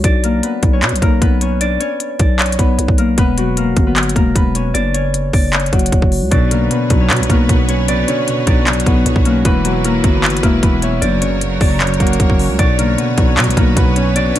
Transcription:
Already playing: C#4 F#4 C#5
0.04 B1 D4 D5, kick, closed hi-hat
0.24 A#3 A#4, closed hi-hat
0.43 B3 B4, closed hi-hat
0.63 B1, kick, closed hi-hat
0.73 C#4 C#5
0.82 B2, clap, closed hi-hat
0.89 B1, closed hi-hat
0.96 closed hi-hat
1.02 B1 A#3 A#4, kick, closed hi-hat
1.22 B1 B3 B4, kick, closed hi-hat
1.41 C#4 C#5, closed hi-hat
1.61 D4 D5, closed hi-hat
1.80 C#4 C#5, closed hi-hat
2.00 closed hi-hat
2.19 B1 D4 D5, kick, closed hi-hat
2.39 C#4 C#5, clap, closed hi-hat
2.46 closed hi-hat
2.52 closed hi-hat
2.59 B1 B3 B4, kick, closed hi-hat
2.79 B1, closed hi-hat
2.88 B1, kick
2.98 A#3 A#4, closed hi-hat
3.18 E1 B3 B4, kick, closed hi-hat
3.38 F#3 F#4, closed hi-hat
3.57 A#3 A#4, closed hi-hat
3.77 G1, kick, closed hi-hat
3.87 B3 B4
3.96 clap, closed hi-hat
4.03 closed hi-hat
4.09 closed hi-hat
4.16 E1 A#3 A#4, kick, closed hi-hat
4.35 E1 B3 B4, kick, closed hi-hat
4.55 C#4 C#5, closed hi-hat
4.74 F#1 D4 D5, closed hi-hat
4.94 C#4 C#5, closed hi-hat
5.14 closed hi-hat
5.33 F#1 D4 D5, kick, open hi-hat
5.53 C#4 C#5, clap, closed hi-hat
5.60 closed hi-hat
5.66 closed hi-hat
5.73 F#1 F#3 F#4, kick, closed hi-hat
5.79 closed hi-hat
5.86 closed hi-hat
5.92 F#1, kick, closed hi-hat
6.02 F#1, kick
6.12 open hi-hat
6.22 C#2
6.31 B1 B2 B3 D4 F#4 B4 C#5 D5, kick, closed hi-hat
6.51 D3 A#3 A#4, closed hi-hat
6.71 B2 B3 B4, closed hi-hat
6.90 B1 F#3, kick, closed hi-hat
7.01 C#4 C#5
7.10 B2, clap, closed hi-hat
7.16 B1, closed hi-hat
7.23 closed hi-hat
7.30 B1 A#3 B3 A#4, kick, closed hi-hat
7.49 B1 B2 B3 B4, kick, closed hi-hat
7.68 C#4 C#5, closed hi-hat
7.88 B2 D4 D5, closed hi-hat
8.08 D3 C#4 C#5, closed hi-hat
8.28 B2, closed hi-hat
8.47 B1 F#3 D4 D5, kick, closed hi-hat
8.67 B2 C#4 C#5, clap, closed hi-hat
8.73 closed hi-hat
8.80 closed hi-hat
8.86 B1 B3 B4, kick, closed hi-hat
9.05 B1 B2, closed hi-hat
9.16 B1, kick
9.25 A#3 C#4 A#4, closed hi-hat
9.45 E1 E3 B3 E4 B4, kick, closed hi-hat
9.65 F#3 F#4, closed hi-hat
9.84 E3 A#3 A#4, closed hi-hat
10.04 G1 B3, kick, closed hi-hat
10.14 B3 B4
10.24 E3, clap, closed hi-hat
10.30 closed hi-hat
10.37 closed hi-hat
10.43 E1 A#3 E4 A#4, kick, closed hi-hat
10.63 E1 E3 B3 B4, kick, closed hi-hat
10.82 C#4 C#5 E5, closed hi-hat
11.01 F#1 F#2 F#3 D4 F#4 A#4 C#5 D5, closed hi-hat
11.22 C#3 C#4 C#5, closed hi-hat
11.41 F#2, closed hi-hat
11.61 F#1 F#3 D4 D5, kick, open hi-hat
11.80 F#2 C#4 C#5, clap, closed hi-hat
11.87 closed hi-hat
11.94 closed hi-hat
12.00 F#1 F#3 A#3 F#4, kick, closed hi-hat
12.07 closed hi-hat
12.13 closed hi-hat
12.20 F#1 F#2, kick, closed hi-hat
12.30 F#1, kick
12.39 C#4, open hi-hat
12.49 C#2
12.59 B1 B2 B3 D4 F#4 B4 D5, kick, closed hi-hat
12.78 D3 A#3 A#4, closed hi-hat
12.98 B2 B3 B4, closed hi-hat
13.18 B1 F#3, kick, closed hi-hat
13.28 C#4 C#5
13.37 B2, clap, closed hi-hat
13.44 B1, closed hi-hat
13.50 closed hi-hat
13.57 B1 A#3 B3 A#4, kick, closed hi-hat
13.77 B1 B2 B3 B4, kick, closed hi-hat
13.96 C#4 C#5, closed hi-hat
14.16 B2 D4 D5, closed hi-hat
14.35 D3 C#5, closed hi-hat

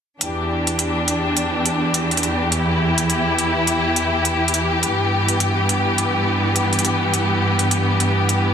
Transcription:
0.21 E2 E3 D4 G4, closed hi-hat
0.67 closed hi-hat
0.79 closed hi-hat
1.08 closed hi-hat
1.37 closed hi-hat
1.66 closed hi-hat
1.94 closed hi-hat
2.11 closed hi-hat
2.17 closed hi-hat
2.23 closed hi-hat
2.52 E4, closed hi-hat
2.98 closed hi-hat
3.10 closed hi-hat
3.38 closed hi-hat
3.67 closed hi-hat
3.96 closed hi-hat
4.25 closed hi-hat
4.48 closed hi-hat
4.54 closed hi-hat
4.82 G2 B3, closed hi-hat
5.28 closed hi-hat
5.40 closed hi-hat
5.69 closed hi-hat
5.98 closed hi-hat
6.56 closed hi-hat
6.73 closed hi-hat
6.79 closed hi-hat
6.85 closed hi-hat
7.14 closed hi-hat
7.59 closed hi-hat
7.71 closed hi-hat
8.00 closed hi-hat
8.29 closed hi-hat

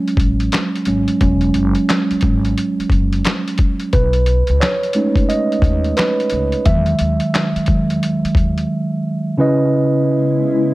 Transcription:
Already playing: F#3 G#3 C#4
0.08 closed hi-hat
0.17 A1, kick, closed hi-hat
0.40 closed hi-hat
0.52 snare, clap, closed hi-hat
0.76 closed hi-hat
0.85 G#1 F#3 G#3 C#4, closed hi-hat
1.08 closed hi-hat
1.21 E1 F#3 G#3 C#4, kick, closed hi-hat
1.41 closed hi-hat
1.54 F#1, closed hi-hat
1.75 closed hi-hat
1.89 snare, clap, closed hi-hat
2.11 muted upright bass stroke, closed hi-hat
2.21 G#1, kick, closed hi-hat
2.45 closed hi-hat
2.58 closed hi-hat
2.79 muted upright bass stroke, closed hi-hat
2.90 F#1, kick, closed hi-hat
3.13 closed hi-hat
3.25 snare, clap, closed hi-hat
3.48 closed hi-hat
3.58 kick, closed hi-hat
3.80 closed hi-hat
3.93 B1 B4, kick, closed hi-hat
4.13 closed hi-hat
4.26 closed hi-hat
4.47 C#2, closed hi-hat
4.60 C#5, snare, clap, closed hi-hat
4.83 closed hi-hat
4.93 G#3 A3 C#4 D#4, closed hi-hat
5.16 kick, closed hi-hat
5.29 D#5, closed hi-hat
5.52 closed hi-hat
5.62 D#2, kick, closed hi-hat
5.84 closed hi-hat
5.97 B4, snare, clap, closed hi-hat
6.20 closed hi-hat
6.30 C#2, closed hi-hat
6.52 closed hi-hat
6.65 E2 D#3 F#3 G#3 E5, kick, closed hi-hat
6.86 closed hi-hat
6.99 D#2, closed hi-hat
7.20 closed hi-hat
7.35 snare, clap, closed hi-hat
7.56 muted upright bass stroke, closed hi-hat
7.66 E2 D#3 F#3 G#3, kick, closed hi-hat
7.90 closed hi-hat
8.03 closed hi-hat
8.25 muted upright bass stroke, closed hi-hat
8.35 D#2, kick, closed hi-hat
8.58 closed hi-hat
9.38 C#3 G#3 B3 C#4 E4 B4 D#5

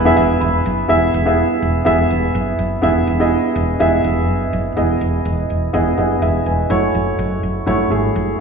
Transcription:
Already playing: E1 B3 E4 G#4 B4 E5
0.05 B3 E4 G#4 E5
0.17 E1 E5
0.40 E1 B5
0.66 F#1
0.88 E1 B3 E4 G#4 E5
1.14 E1
1.26 B3 E4 G#4 E5
1.62 E1
1.85 E1 B3 E4 G#4 E5
2.10 E1
2.35 F#1
2.59 F#1
2.82 E1 B3 E4 G#4 E5
3.07 E1
3.20 B3 E4 G#4 D#5
3.55 E1
3.80 E1 B3 E4 G#4 E5
4.04 E1
4.28 F#1
4.53 F#1
4.76 E1 B3 E4 G#4 D#5
5.01 E1
5.25 E1
5.50 E1
5.73 E1 B3 E4 G#4 D#5
5.97 F#1 B3 E4 G#4 D#5
6.22 E1 G#4 E5
6.46 E1 B4 G#5
6.69 F#1 A3 E4 F#4 C#5
6.95 F#1
7.19 F#1
7.43 F#1
7.66 F#1 A3 E4 F#4 C#5
7.90 G#1 A3 E4 F#4 G#4
8.16 F#1

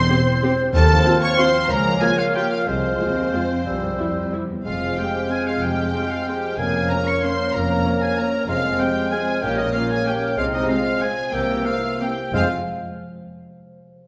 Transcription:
Already playing: E3 C4 G4 C5 C6 G6
0.10 C4 G4 C5
0.27 G4
0.43 C4 G4 C5
0.59 G4
0.73 D#2 D#3 C4 A4 C5 A5 F6
0.89 F3
1.03 C4 F4
1.21 C5 C#5 C#6
1.38 C4 F4 C5 C6
1.69 C#2 C#3 A#3 A#4 C#5 A#5
1.85 F3
2.00 A#3 F4 G#4 G#5
2.18 F4 F5
2.34 A#3 F4 G4 G5
2.51 F4 A#4 F5
2.66 C2 C3 G#3 C4 C5 F6
2.83 F3
2.99 D#2 G#3 F4
3.18 G#4
3.34 F2 G#3 F4
3.51 G#4
3.66 C2 G2 C3 G3 E6
3.83 G3
3.98 F2 G3 E4
4.17 C5
4.33 G3 E4 G4
4.50 E2 C5
4.64 F1 F2 G#3 C4 F4 C5 F5 F6
4.83 G#3
4.98 G#3 C4 F4 G4 G5
5.15 C5
5.30 G#3 C4 G#4 G#5
5.47 F4 C5 F5
5.62 F1 F2 G4 G5
5.77 G#3
5.93 G#3 C4 F4
6.09 F4 C5 F5
6.25 G#3 C4 G4 G#4 G5
6.43 C5
6.57 F1 F2 A#3 C#4 G#4 C#5 G#5 F6
6.74 A#3
6.89 A#3 C#4 F4 A#4 A#5
7.06 C#5 C#6
7.23 A#3 C#4 C5 C6
7.40 C#5
7.53 F1 F2 A#4 A#5
7.69 A#3
7.85 A#3 C#4 F4
8.01 G#4 C#5 G#5
8.17 A#3 C#4 A#4 A#5
8.33 C#5
8.47 F1 F2 G#3 C4 F4 C5 F5 F6
8.64 G#3
8.79 G#3 C4 F4 G4 G5
8.96 C5
9.11 G#3 C4 G#4 G#5
9.27 C5
9.42 A#1 A#2 A#3 C#4 G4 C#5 G5
9.56 A#3 D#4 D#5
9.72 A#3 C#4 F4 F5
9.89 G#4 C#5 G#5
10.05 A#3 C#4 G4 G5
10.23 C#5
10.36 C2 C3 G#3 C4 F4 C5 F5 F6
10.52 G#3 D#4 D#5
10.68 G#3 C4 F4 F5
10.85 C5
11.01 G#3 C4 G#4 G#5
11.17 C5
11.32 C2 C3 E3 A#3 G4 G5 E6
11.48 A#3
11.65 A#3 C4 E4 F4 F5
11.99 A#3 C4 G4 A#4 G5
12.17 C5
12.30 F1 F2 F3 G#3 C4 F4 C5
12.34 F2 C4 F4 C5 F5 F6

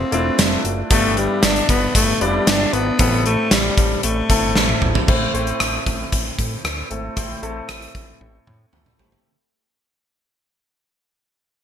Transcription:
Already playing: A3 C4 D4 E4 F4 B4 D5
0.12 E1 A3 C4 D4 E4 F4 D5, closed hi-hat
0.38 F1, snare, closed hi-hat, tambourine
0.65 F#1, closed hi-hat
0.90 G1 G2 A3 B3 D4 E4 G4 D5, kick, closed hi-hat
1.17 G3, closed hi-hat
1.43 G1 D4, snare, closed hi-hat, tambourine
1.56 closed hi-hat
1.69 G1 B3, kick, closed hi-hat
1.95 G1 A3, kick, closed hi-hat
2.20 F1 G3 B3 D4 E4 F4 D5, closed hi-hat
2.28 G4
2.47 G1 D4, snare, closed hi-hat, tambourine
2.73 G#1 B3, closed hi-hat
2.99 A1 A2 B3 C4 E4 A4, kick, closed hi-hat
3.26 A3, closed hi-hat
3.51 A1 G3, snare, closed hi-hat, tambourine
3.77 A1, kick, closed hi-hat
4.03 A1 A3, closed hi-hat
4.29 G1 C4 E4 A4, kick, closed hi-hat
4.56 A1, snare
4.69 high tom
4.82 G#1, mid tom
4.95 floor tom
5.08 A1 A2 A3 C4 E4 C5, kick, crash
5.34 A1 A3 C4 E4 C5, closed hi-hat
5.47 closed hi-hat
5.60 A1, cross-stick, closed hi-hat
5.86 A1, kick, closed hi-hat
6.12 A1, kick, closed hi-hat
6.39 A2, kick, closed hi-hat
6.65 D2, cross-stick, closed hi-hat
6.90 G#1 A3 C4 E4 A4, closed hi-hat
7.16 A1 A2 A3 C4 E4 C5, kick, closed hi-hat
7.42 A1 A3 C4 E4 A4, closed hi-hat
7.69 A1, cross-stick, closed hi-hat
7.82 closed hi-hat
7.95 A1, kick, closed hi-hat
8.21 A1, high tom
8.47 A2, mid tom
8.73 D2, mid tom
8.86 mid tom
8.99 G#1 A3 C4 E4 G4, floor tom
9.12 floor tom

